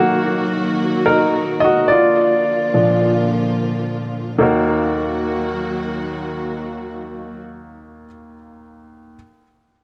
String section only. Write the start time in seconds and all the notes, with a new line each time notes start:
Already playing: D#3 F#3 A#3 F#4
1.91 D3 F3 A#3 F4
4.41 D#3 F#3 A#3 F#4